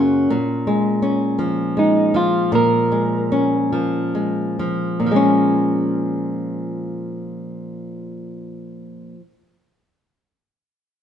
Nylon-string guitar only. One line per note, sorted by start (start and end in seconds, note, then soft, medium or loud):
0.00 0.29 F#2 medium
0.00 0.29 C#3 soft
0.00 0.36 F#3 soft
0.00 0.67 A#3 soft
0.00 1.02 C#4 soft
0.30 2.51 A#2 medium
0.67 1.76 G#3 soft
1.02 3.31 C#4 soft
1.39 2.14 F3 soft
1.77 2.91 G#3 soft
2.14 3.72 F3 soft
2.52 4.98 A#2 medium
2.92 4.14 G#3 soft
3.32 5.16 C#4 soft
3.72 4.59 F3 soft
4.15 5.11 G#3 soft
4.59 5.06 F3 soft
5.00 9.14 A#2 soft
5.06 9.21 F3 soft
5.11 9.26 G#3 soft
5.16 9.30 C#4 soft